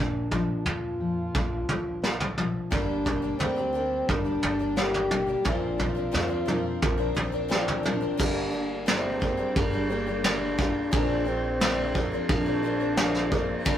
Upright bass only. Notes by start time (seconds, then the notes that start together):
Already playing: A#1
0.65 F2
1.35 A#1
1.69 A#1
2.72 G1
3.40 D2
4.09 G1
4.43 G1
5.45 A#1
6.14 F2
6.83 A#1
7.17 A#1
8.20 G1
9.56 G1
10.93 A#1
12.29 A#1
13.66 G1